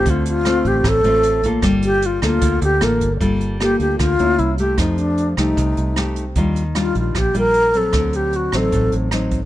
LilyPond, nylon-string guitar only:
\new Staff \with { instrumentName = "Nylon-string guitar" } { \time 4/4 \key g \minor \tempo 4 = 152 << { <a c' f'>4 <a c' f'>4. <a c' f'>4 <bes f' a'>8~ | <bes f' a'>4. <bes f' a'>4. <bes f' a'>8 r8 | <bes f' a'>4 <bes f' a'>4. <bes cis' e'>4 <a g'>8~ | <a g'>4. <a ees' g'>4. <a ees' g'>8 r8 |
<g d' f'>8 r8 <g d' f'>4 r8 <g d' f'>4 <fis c'>8~ | <fis c'>4. <fis c' ees'>4. <fis c' ees'>8 r8 | } \\ { d2 a,2 | g2 d2 | g2 d4 r4 | f2 c2 |
ees2 bes,2 | d2 a,2 | } >> }